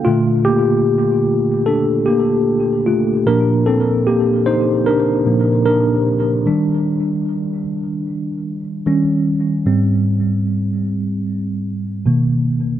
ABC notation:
X:1
M:4/4
L:1/16
Q:"Swing 16ths" 1/4=75
K:Bb
V:1 name="Tine electric piano"
F2 [B,G]4 z2 [DA]2 [B,G]4 [A,F]2 | [DB]2 [CA]2 [B,G]2 [Ec]2 [DB]4 [DB]3 z | z16 | z16 |]
V:2 name="Tine electric piano" clef=bass
[B,,D,A,]6 z8 z2 | [B,,F,B,]8- [B,,F,B,]2 [B,,F,B,]2 z4 | [E,G,D]6 z6 [E,G,_D]4 | [_A,,G,C]2 z8 z2 [=B,,^D,^A,]2 z2 |]